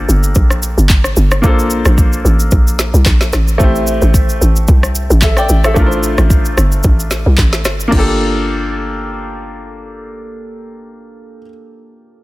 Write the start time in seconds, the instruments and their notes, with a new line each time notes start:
Already playing: grand piano A#3 D4 F4 G4 A4
0.09 log drum bass G1, shaker
0.23 shaker
0.35 log drum bass A#1, kick, shaker
0.50 cross-stick, shaker
0.63 shaker
0.78 log drum bass G1, shaker
0.89 kick, clap, shaker
1.04 cross-stick, shaker
1.16 log drum bass G1, shaker
1.31 cross-stick, shaker
1.42 log drum bass A#1, grand piano A#3 D4 F4, kick, shaker
1.46 grand piano A4 C5
1.59 shaker
1.70 shaker
1.85 log drum bass A#1, cross-stick, shaker
1.98 kick, shaker
2.13 shaker
2.25 log drum bass A1, shaker
2.40 shaker
2.51 log drum bass A#1, kick, shaker
2.67 shaker
2.79 snare, shaker
2.94 log drum bass C2, shaker
3.06 log drum bass A#1, kick, clap, shaker
3.21 snare, shaker
3.33 log drum bass A1, cross-stick, snare, shaker
3.48 shaker
3.58 log drum bass A1, grand piano A3 C4 E4, kick, shaker
3.62 grand piano G4 C5
3.76 shaker
3.87 shaker
4.02 log drum bass A1, shaker
4.14 kick, shaker
4.29 shaker
4.41 log drum bass A1, shaker
4.56 shaker
4.68 log drum bass C2, kick, shaker
4.83 cross-stick, shaker
4.95 shaker
5.10 log drum bass A1, shaker
5.22 grand piano A4 E5, kick, clap, shaker
5.37 grand piano D5 G5, cross-stick, shaker
5.49 log drum bass A1, shaker
5.64 grand piano A4 E5, cross-stick, shaker
5.74 log drum bass A1, grand piano A3 D4 E4, kick, shaker
5.78 grand piano F4 A#4
5.86 grand piano C5
5.92 shaker
6.03 shaker
6.18 log drum bass A1, cross-stick, shaker
6.30 kick, shaker
6.45 shaker
6.57 log drum bass G1, cross-stick, shaker
6.72 shaker
6.83 log drum bass A1, kick, shaker
7.00 shaker
7.11 snare, shaker
7.26 log drum bass C2
7.38 log drum bass A1, kick, clap, shaker
7.53 snare, shaker
7.65 log drum bass G1, cross-stick, snare, shaker
7.80 shaker
7.88 grand piano A#3 D4
7.92 log drum bass G1, grand piano F4 G4, kick, crash
7.99 grand piano A4